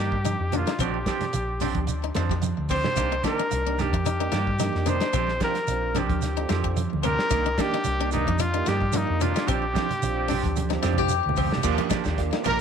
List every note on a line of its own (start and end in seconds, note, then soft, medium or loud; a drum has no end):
0.00 0.34 G2 medium
0.00 0.15 D#3 medium
0.00 0.16 A#3 medium
0.00 0.16 D4 medium
0.00 0.16 G4 medium
0.00 0.58 G4 medium
0.12 kick medium
0.25 0.42 D#4 medium
0.25 closed hi-hat medium
0.25 high conga medium
0.25 shekere medium
0.40 0.63 F2 medium
0.52 0.70 D#3 medium
0.52 0.71 A#3 medium
0.52 0.62 D4 medium
0.52 0.71 D4 medium
0.52 muted clean electric guitar stroke medium
0.52 closed hi-hat soft
0.52 low conga medium
0.52 shekere soft
0.56 0.81 F4 medium
0.67 0.75 D#4 medium
0.67 snare medium
0.67 closed hi-hat medium
0.79 1.03 A#1 medium
0.79 0.97 F3 medium
0.79 0.97 C4 medium
0.79 0.98 D4 medium
0.79 0.98 G4 medium
0.79 1.85 G4 medium
0.79 kick medium
0.79 closed hi-hat medium
0.79 high conga soft
0.79 shekere medium
1.06 1.24 F3 medium
1.06 1.25 C4 medium
1.06 1.25 D4 medium
1.06 1.25 G4 medium
1.06 kick medium
1.06 snare medium
1.06 closed hi-hat soft
1.06 high conga medium
1.06 shekere soft
1.21 snare soft
1.21 closed hi-hat soft
1.21 low conga medium
1.33 1.75 A#1 medium
1.33 closed hi-hat medium
1.33 high conga soft
1.33 shekere medium
1.60 1.78 F3 medium
1.60 1.79 C4 medium
1.60 1.78 D4 medium
1.60 1.79 D4 medium
1.60 1.79 G4 medium
1.60 open hi-hat medium
1.60 high conga medium
1.60 low conga medium
1.60 shekere soft
1.75 2.10 D2 medium
1.75 kick medium
1.75 closed hi-hat medium
1.75 high conga medium
1.87 closed hi-hat medium
1.87 high conga soft
1.87 shekere medium
2.04 2.11 D#4 medium
2.15 2.52 F2 medium
2.15 2.33 F3 medium
2.15 2.33 C4 medium
2.15 2.33 D4 medium
2.15 2.25 F4 medium
2.15 snare medium
2.15 closed hi-hat soft
2.15 high conga medium
2.15 shekere soft
2.29 2.47 G4 medium
2.29 kick medium
2.29 snare soft
2.29 high conga medium
2.42 closed hi-hat medium
2.42 high conga medium
2.42 shekere medium
2.58 2.81 D2 medium
2.69 2.85 F3 medium
2.69 2.84 C4 medium
2.69 2.87 C4 medium
2.69 2.84 D4 medium
2.69 2.83 G4 medium
2.69 3.21 C5 loud
2.69 kick medium
2.69 open hi-hat medium
2.69 shekere soft
2.84 2.96 C4 soft
2.84 2.95 D4 soft
2.84 2.96 G4 soft
2.84 snare medium
2.84 low conga medium
2.96 3.20 C2 medium
2.96 3.14 D#3 medium
2.96 3.14 A#3 medium
2.96 3.11 A#3 medium
2.96 3.14 D4 medium
2.96 3.11 D4 medium
2.96 3.11 D#4 medium
2.96 3.06 F4 medium
2.96 3.14 G4 medium
2.96 3.12 G4 medium
2.96 kick medium
2.96 closed hi-hat medium
2.96 high conga soft
2.96 shekere medium
3.12 3.20 D#4 medium
3.22 3.40 D#3 medium
3.22 3.43 A#3 medium
3.22 3.41 A#3 medium
3.22 3.41 D4 medium
3.22 3.33 D4 medium
3.22 3.44 D4 medium
3.22 3.44 D#4 medium
3.22 3.44 F4 medium
3.22 3.41 G4 medium
3.22 3.83 A#4 medium
3.22 kick medium
3.22 snare medium
3.22 closed hi-hat soft
3.22 high conga medium
3.22 shekere soft
3.39 3.56 D#4 medium
3.51 3.94 C2 medium
3.51 closed hi-hat medium
3.51 high conga soft
3.51 shekere medium
3.66 3.92 A#3 medium
3.66 3.83 D4 medium
3.66 3.92 D4 medium
3.66 3.92 D#4 medium
3.66 3.92 G4 medium
3.78 3.95 D#3 medium
3.78 3.96 D4 medium
3.78 3.96 G4 medium
3.78 4.90 G4 medium
3.78 muted clean electric guitar stroke medium
3.78 snare soft
3.78 closed hi-hat soft
3.78 high conga medium
3.78 low conga medium
3.78 shekere soft
3.93 4.27 F2 medium
3.93 4.01 F4 medium
3.93 kick medium
3.93 high conga medium
4.06 4.15 D#4 medium
4.06 closed hi-hat medium
4.06 shekere medium
4.20 4.39 A#3 medium
4.20 4.39 D4 medium
4.20 4.28 D#4 medium
4.20 4.39 D#4 medium
4.20 4.39 G4 medium
4.32 4.69 G2 medium
4.32 4.49 D#3 medium
4.32 4.50 A#3 medium
4.32 4.50 D4 medium
4.32 4.49 F4 medium
4.32 4.50 G4 medium
4.32 snare medium
4.32 closed hi-hat soft
4.32 high conga medium
4.32 shekere soft
4.47 kick medium
4.59 4.99 A#3 medium
4.59 5.00 D4 medium
4.59 4.76 D#4 medium
4.59 5.00 D#4 medium
4.59 snare soft
4.59 closed hi-hat medium
4.59 high conga medium
4.59 shekere medium
4.63 5.00 G4 medium
4.75 4.98 F2 medium
4.75 snare soft
4.75 high conga medium
4.86 5.01 D#3 medium
4.86 5.00 A#3 medium
4.86 4.95 D4 medium
4.86 5.00 D4 medium
4.86 4.99 G4 medium
4.86 5.42 C5 medium
4.86 closed hi-hat soft
4.86 low conga medium
4.86 shekere soft
5.00 5.13 A#3 soft
5.00 5.12 D4 soft
5.00 5.09 D#4 medium
5.00 5.13 G4 soft
5.00 snare medium
5.00 closed hi-hat soft
5.13 5.37 A#1 medium
5.13 5.31 F3 medium
5.13 5.31 C4 medium
5.13 5.30 C4 medium
5.13 5.31 D4 medium
5.13 5.31 G4 medium
5.13 kick medium
5.13 closed hi-hat medium
5.13 shekere medium
5.28 snare soft
5.40 5.58 F3 medium
5.40 5.55 C4 medium
5.40 5.58 D4 medium
5.40 5.56 D4 medium
5.40 5.58 G4 medium
5.40 5.56 G4 medium
5.40 6.01 A#4 medium
5.40 muted clean electric guitar stroke medium
5.40 kick medium
5.40 snare medium
5.40 closed hi-hat medium
5.40 high conga medium
5.40 shekere soft
5.44 5.56 F4 medium
5.55 snare soft
5.55 closed hi-hat medium
5.68 6.10 A#1 medium
5.68 6.01 C4 medium
5.68 6.02 D4 medium
5.68 closed hi-hat medium
5.68 high conga soft
5.68 shekere medium
5.72 6.02 F4 medium
5.72 6.02 G4 medium
5.95 6.12 F3 medium
5.95 6.13 C4 medium
5.95 6.12 D4 medium
5.95 6.13 D4 medium
5.95 6.13 G4 medium
5.95 snare soft
5.95 closed hi-hat soft
5.95 high conga medium
5.95 low conga medium
5.95 shekere soft
5.99 6.79 G4 medium
6.10 6.44 D2 medium
6.10 kick medium
6.10 closed hi-hat soft
6.10 high conga medium
6.22 snare soft
6.22 closed hi-hat medium
6.22 shekere medium
6.37 6.82 C4 medium
6.37 6.82 D4 medium
6.37 6.45 D#4 medium
6.37 6.82 F4 medium
6.37 6.82 A4 medium
6.49 6.86 F2 medium
6.49 6.67 F3 soft
6.49 6.67 C4 medium
6.49 6.58 F4 medium
6.49 6.67 G4 medium
6.49 snare medium
6.49 closed hi-hat soft
6.49 high conga medium
6.49 shekere soft
6.64 6.81 G4 medium
6.64 kick medium
6.77 closed hi-hat medium
6.77 high conga medium
6.77 shekere medium
6.93 7.15 D2 medium
6.93 high conga medium
7.02 7.18 F3 medium
7.02 7.20 C4 medium
7.02 7.18 C4 medium
7.02 7.17 D4 medium
7.02 7.17 G4 medium
7.02 7.62 A#4 loud
7.02 closed hi-hat soft
7.02 low conga medium
7.02 shekere soft
7.18 7.30 C4 soft
7.18 7.29 D4 soft
7.18 7.29 G4 soft
7.18 snare medium
7.30 7.54 C2 medium
7.30 7.48 D#3 medium
7.30 7.48 A#3 medium
7.30 7.45 A#3 medium
7.30 7.45 D4 medium
7.30 7.45 D#4 medium
7.30 7.40 F4 medium
7.30 7.48 G4 medium
7.30 7.46 G4 medium
7.30 muted clean electric guitar stroke medium
7.30 kick medium
7.30 closed hi-hat medium
7.30 high conga soft
7.30 shekere medium
7.46 7.53 D#4 medium
7.57 7.75 A#3 medium
7.57 7.78 A#3 medium
7.57 7.75 D4 medium
7.57 7.67 D4 medium
7.57 7.78 D4 medium
7.57 7.78 D#4 medium
7.57 7.75 G4 medium
7.57 7.78 G4 medium
7.57 8.12 G4 loud
7.57 kick medium
7.57 snare medium
7.57 closed hi-hat soft
7.57 high conga medium
7.57 shekere soft
7.72 7.90 D#4 medium
7.72 snare soft
7.84 8.27 C2 loud
7.84 closed hi-hat medium
7.84 shekere medium
7.88 high conga soft
7.99 8.12 A#3 soft
7.99 8.25 A#3 medium
7.99 8.12 D4 soft
7.99 8.17 D4 medium
7.99 8.26 D4 medium
7.99 8.26 D#4 medium
7.99 8.12 G4 soft
7.99 8.26 G4 medium
8.11 8.29 D#3 medium
8.11 8.30 A#3 medium
8.11 8.30 D4 medium
8.11 8.42 D#4 medium
8.11 8.30 G4 medium
8.11 closed hi-hat soft
8.11 high conga medium
8.11 low conga medium
8.11 shekere soft
8.27 8.61 F2 medium
8.27 8.35 F4 medium
8.27 kick medium
8.27 high conga medium
8.39 8.48 D#4 medium
8.39 8.70 F4 medium
8.39 closed hi-hat medium
8.39 high conga soft
8.39 shekere medium
8.54 8.73 A#3 medium
8.54 8.73 D4 medium
8.54 8.61 D#4 medium
8.54 8.74 D#4 medium
8.54 8.74 G4 medium
8.66 9.03 G2 loud
8.66 8.84 D#3 medium
8.66 8.84 A#3 medium
8.66 8.84 D4 medium
8.66 8.83 F4 medium
8.66 8.84 G4 medium
8.66 8.98 G4 medium
8.66 snare medium
8.66 closed hi-hat soft
8.66 high conga medium
8.66 shekere soft
8.82 kick medium
8.93 9.32 A#3 medium
8.93 9.10 D4 medium
8.93 9.33 D4 medium
8.93 9.33 D#4 medium
8.93 9.33 F4 medium
8.93 closed hi-hat medium
8.93 high conga medium
8.93 shekere medium
8.97 9.23 D#4 medium
9.10 9.32 F2 medium
9.20 9.35 D#3 medium
9.20 9.34 A#3 medium
9.20 9.30 D4 medium
9.20 9.35 D4 medium
9.20 9.49 F4 medium
9.20 9.33 G4 medium
9.20 closed hi-hat soft
9.20 low conga medium
9.20 shekere soft
9.35 9.46 A#3 soft
9.35 9.46 D4 soft
9.35 9.43 D#4 medium
9.35 9.46 G4 soft
9.35 snare medium
9.35 closed hi-hat medium
9.47 9.72 A#1 medium
9.47 9.64 F3 medium
9.47 9.64 C4 medium
9.47 9.65 C4 medium
9.47 9.65 D4 medium
9.47 9.65 G4 medium
9.47 11.10 G4 medium
9.47 kick medium
9.47 closed hi-hat medium
9.47 high conga soft
9.47 shekere medium
9.73 9.91 F3 medium
9.73 9.91 C4 medium
9.73 9.89 C4 medium
9.73 9.91 D4 medium
9.73 9.88 D4 medium
9.73 9.89 F4 medium
9.73 9.92 G4 medium
9.73 9.89 G4 medium
9.73 kick medium
9.73 snare medium
9.73 closed hi-hat medium
9.73 high conga medium
9.73 shekere soft
9.90 closed hi-hat medium
9.90 low conga medium
10.02 10.44 A#1 medium
10.02 10.34 C4 medium
10.02 10.34 D4 medium
10.02 10.35 F4 medium
10.02 10.35 G4 medium
10.02 closed hi-hat medium
10.02 high conga soft
10.02 shekere medium
10.16 10.28 C4 soft
10.16 10.28 D4 soft
10.16 10.29 G4 medium
10.28 10.46 F3 medium
10.28 10.46 C4 medium
10.28 10.45 D4 medium
10.28 10.46 D4 medium
10.28 10.47 G4 medium
10.28 open hi-hat medium
10.28 high conga medium
10.28 low conga medium
10.28 shekere soft
10.44 10.78 D2 medium
10.44 kick medium
10.44 closed hi-hat medium
10.44 high conga medium
10.56 closed hi-hat medium
10.56 high conga loud
10.56 shekere medium
10.70 11.14 C4 medium
10.70 11.14 D4 medium
10.70 10.78 D#4 medium
10.70 11.14 F4 medium
10.70 11.15 G4 medium
10.70 snare soft
10.76 high conga medium
10.82 11.19 F2 loud
10.82 11.00 F3 medium
10.82 11.00 C4 medium
10.82 11.00 D4 medium
10.82 10.92 F4 medium
10.82 11.00 G4 medium
10.82 snare medium
10.82 closed hi-hat soft
10.82 shekere soft
10.93 low conga medium
10.98 11.63 G4 medium
10.98 kick medium
10.98 snare soft
10.98 low conga medium
11.09 closed hi-hat medium
11.09 shekere medium
11.26 11.49 D2 medium
11.26 low conga medium
11.36 11.52 F3 medium
11.36 11.54 C4 medium
11.36 11.52 C4 medium
11.36 11.49 G4 medium
11.36 kick medium
11.36 open hi-hat medium
11.36 low conga medium
11.36 shekere soft
11.47 11.63 G4 medium
11.47 low conga medium
11.51 11.63 D4 soft
11.51 snare medium
11.57 low conga medium
11.63 11.77 D#2 medium
11.63 11.81 F3 medium
11.63 11.89 A#3 medium
11.63 11.81 A#3 medium
11.63 11.89 D4 medium
11.63 11.81 D4 medium
11.63 11.89 F4 medium
11.63 11.72 G4 medium
11.63 11.90 G4 medium
11.63 11.81 G4 loud
11.63 kick medium
11.63 snare soft
11.63 crash medium
11.63 shekere medium
11.78 11.86 F4 medium
11.78 closed hi-hat soft
11.78 high conga medium
11.89 12.05 F3 medium
11.89 12.05 A#3 medium
11.89 12.04 D4 medium
11.89 12.07 D#4 medium
11.89 12.03 G4 medium
11.89 muted fingered electric bass stroke soft
11.89 kick medium
11.89 snare medium
11.89 closed hi-hat soft
11.89 high conga medium
11.89 shekere medium
12.04 12.29 D#2 medium
12.04 12.21 A#3 soft
12.04 12.21 D4 medium
12.04 12.21 G4 medium
12.04 kick medium
12.04 snare medium
12.04 closed hi-hat soft
12.04 shekere soft
12.17 12.43 A#3 loud
12.17 12.43 D4 medium
12.17 12.44 F4 medium
12.17 12.44 G4 loud
12.17 kick medium
12.17 snare soft
12.17 closed hi-hat medium
12.33 12.40 D#4 medium
12.33 snare medium
12.43 12.61 A#1 medium
12.43 12.61 F3 medium
12.43 12.61 A#3 medium
12.43 12.61 D4 medium
12.43 12.61 F4 medium
12.43 12.61 G4 medium
12.43 12.58 A#4 medium
12.43 closed hi-hat soft
12.43 low conga medium
12.43 shekere soft
12.49 12.60 A#4 loud